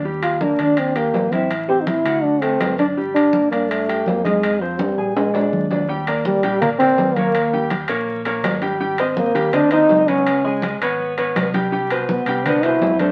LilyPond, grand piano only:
\new Staff \with { instrumentName = "Grand piano" } { \time 4/4 \key ees \lydian \tempo 4 = 165 <g g'>4 <bes bes'>8 <d' d''>4 <g' g''>4 <e' e''>8~ | <e' e''>8 <c' c''>4 <fis' fis''>4 <a a'>4 <d' d''>8 | <g g'>4 <bes bes'>8 <d' d''>4 <g' g''>4 <ees' ees''>8~ | <ees' ees''>8 <c' c''>4 <aes' aes''>4 <d' d''>4 <d' d''>8 |
<g g' g''>8 <bes bes' d''>4 <g g' g''>8 <bes bes' d''>8 <bes bes' d''>4 <bes bes' cis''>8~ | <bes bes' cis''>8 <g g' g''>4 <bes bes' des''>4 <bes bes' des''>4 <g g' g''>8 | <g g' g''>8 <c' c'' ees''>4 <g g' g''>8 <c' c'' ees''>8 <c' c'' ees''>4 <b b' cis''>8~ | <b b' cis''>8 <gis gis' gis''>4 <b b' cis''>4 <b b' cis''>4 <g g' g''>8 |
<g g' g''>8 <b, b' c''>4 <g g' g''>8 <b b' c''>8 <b, b' c''>4 <a a' c''>8 | }